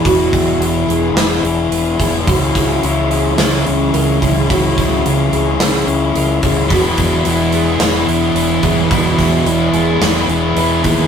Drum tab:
HH |oooooooo|oooooooo|oooooooo|oooooooo|
SD |----o---|-o--o---|-o--o---|----o---|
BD |oo-----o|oo-----o|oo-----o|oo-----o|

HH |oooooooo|
SD |-o--o---|
BD |oo-----o|